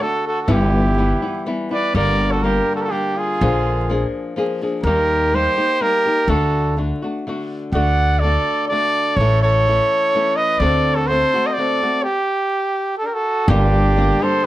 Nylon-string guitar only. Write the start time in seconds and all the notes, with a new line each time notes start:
0.00 D3 A3 D4 F#4
0.48 G2 D3 E3 G3 B3 E4
0.98 E3 G3 B3 E4
1.22 E3 G3 B3 E4
1.46 E3 G3 B3 E4
1.71 E3 G3 B3 E4
1.95 G2 D3 G3 A#3 D4 G4
2.44 G3 A#3 D4 G4
2.91 G3 A#3 D4 G4
3.41 A#2 D3 F3 A#3 D4 G#4
3.89 F3 A#3 D4 G#4
4.36 F3 A#3 D4 G#4
4.62 F3 A#3 D4 G#4
4.86 D#3 G3 A#3 D#4 G4
5.33 G3 A#3 D#4 G4
5.58 A#3 D#4 G4
5.81 G3 A#3 D#4 G4
6.06 A#3 D#4 G4
6.29 D3 A3 D4 F#4
6.77 D3 A3 D4 F#4
7.02 A3 D4 F#4
7.27 D3 A3 D4 F#4
7.74 D3 A3 D4 F#4
8.24 D3 A3 D4 F#4
8.71 D3 A3 D4 F#4
9.20 A2 E3 A3 C#4 E4
9.67 E3 A3 C#4 E4
10.14 E3 A3 C#4 E4
10.61 D3 A3 C4 F#4
11.09 D3 A3 C4 F#4
11.34 A3 C4 F#4
11.57 D3 A3 C4 F#4
11.82 A3 C4 F#4
13.49 G2 D3 G3 A#3 D4 G4
13.97 G3 A#3 D4 G4
14.22 G3 A#3 D4 G4